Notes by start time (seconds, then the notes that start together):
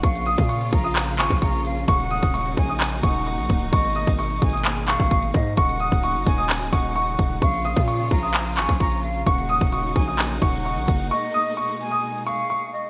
Already playing: A#3
0.03 A#1 C#3 F3 F4 F5 C#6, kick, closed hi-hat
0.15 closed hi-hat
0.26 D#6, closed hi-hat
0.38 A#2, kick, closed hi-hat
0.49 C#6, closed hi-hat
0.61 closed hi-hat
0.72 A#1 A#5, kick, closed hi-hat
0.84 D#6
0.95 clap, closed hi-hat
1.07 closed hi-hat
1.19 G#1 G#5 C#6, clap, closed hi-hat
1.30 A#1, kick, closed hi-hat
1.42 A#5 C#6, kick, closed hi-hat
1.53 closed hi-hat
1.65 F5, closed hi-hat
1.88 D#1 F#3 D#4 F#5 C#6, kick, closed hi-hat
2.00 closed hi-hat
2.11 D#6, closed hi-hat
2.23 D#1, kick, closed hi-hat
2.34 C#6, closed hi-hat
2.46 closed hi-hat
2.57 A#1 G#5, kick, closed hi-hat
2.69 D#6
2.80 clap, closed hi-hat
2.92 closed hi-hat
3.03 D#1 F#5 C#6, kick, closed hi-hat
3.15 closed hi-hat
3.26 C#6, closed hi-hat
3.38 A#1, closed hi-hat
3.49 C#1, kick, closed hi-hat
3.73 G#1 B2 G#3 D#5 C#6, kick, closed hi-hat
3.85 closed hi-hat
3.95 D#6, closed hi-hat
4.07 G#1, kick, closed hi-hat
4.19 C#6, closed hi-hat
4.30 closed hi-hat
4.42 G#1 G#5, kick, closed hi-hat, open hi-hat
4.50 D#6, closed hi-hat
4.57 closed hi-hat
4.64 clap, closed hi-hat
4.77 closed hi-hat
4.88 F5 C#6, clap, closed hi-hat
4.99 G#1, kick, closed hi-hat
5.11 C#6, kick, closed hi-hat
5.23 closed hi-hat
5.34 G#2 D#5, kick, closed hi-hat
5.57 D#1 C#3 F#3 D#4 F#5 C#6, kick, closed hi-hat
5.69 closed hi-hat
5.80 D#6, closed hi-hat
5.92 C#1, kick, closed hi-hat
6.03 C#6, closed hi-hat
6.15 F#1, closed hi-hat
6.26 D#1 G#5, kick, closed hi-hat
6.38 D#6
6.49 clap, closed hi-hat
6.61 C#1, closed hi-hat
6.73 D#1 F#5 C#6, kick, closed hi-hat
6.84 closed hi-hat
6.96 C#6, closed hi-hat
7.07 closed hi-hat
7.19 D#1, kick, closed hi-hat
7.42 A#1 F3 F4 F5 C#6, kick, closed hi-hat
7.54 closed hi-hat
7.64 D#6, closed hi-hat
7.76 A#2, kick, closed hi-hat
7.88 C#6, closed hi-hat
8.00 closed hi-hat
8.11 A#1 A#5, kick, closed hi-hat
8.23 D#6
8.34 clap, closed hi-hat
8.46 closed hi-hat
8.57 G#1 G#5 C#6, clap, closed hi-hat
8.69 A#1, kick, closed hi-hat
8.80 A#5 C#6, kick, closed hi-hat
8.92 closed hi-hat
9.03 F5, closed hi-hat
9.26 D#1 F#3 A#3 D#4 F#5 C#6, kick, closed hi-hat
9.38 closed hi-hat
9.49 D#6, closed hi-hat
9.61 D#1, kick, closed hi-hat
9.72 C#6, closed hi-hat
9.84 closed hi-hat
9.96 A#1 G#5, kick, closed hi-hat
10.08 D#6
10.18 clap, closed hi-hat
10.31 closed hi-hat
10.42 D#1 F#5 C#6, kick, closed hi-hat
10.53 closed hi-hat
10.65 C#6, closed hi-hat
10.76 A#1, closed hi-hat
10.88 F#1, kick, closed hi-hat
11.11 B2 G#3 D#5 C#6
11.34 D#6
11.57 C#6
11.80 G#5
11.91 D#6
12.27 F5 C#6
12.50 C#6
12.73 D#5